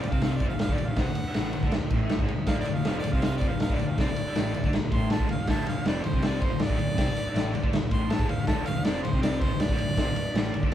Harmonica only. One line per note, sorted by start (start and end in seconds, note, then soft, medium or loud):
0.00 0.12 D5 medium
0.10 0.22 F5 medium
0.23 0.38 F5 medium
0.37 0.48 D5 medium
0.49 0.60 F5 medium
0.61 0.75 F5 loud
0.73 0.89 D5 medium
0.87 0.98 F5 medium
1.00 1.72 F#5 loud
2.47 2.59 F5 loud
2.60 2.76 D5 medium
2.74 2.85 F5 medium
2.88 2.98 F5 medium
2.99 3.14 D5 medium
3.12 3.23 F5 medium
3.25 3.36 F5 loud
3.37 3.50 D5 medium
3.48 3.60 F5 medium
3.61 3.75 F5 loud
3.74 3.90 D5 medium
3.88 3.99 F5 medium
4.00 4.72 D5 loud
4.93 5.10 C6 loud
5.12 5.29 A5 medium
5.31 5.48 F5 medium
5.50 5.67 A5 loud
5.69 5.86 F5 loud
5.88 6.04 D5 medium
6.05 6.22 C5 medium
6.25 6.45 D5 medium
6.43 6.63 C5 medium
6.61 7.70 D5 loud
7.93 8.13 C6 loud
8.12 8.29 A5 loud
8.30 8.47 F5 medium
8.48 8.66 A5 loud
8.66 8.86 F5 loud
8.85 9.02 D5 loud
9.03 9.21 C5 medium
9.22 9.42 D5 loud
9.40 9.62 C5 loud
9.61 10.69 D5 loud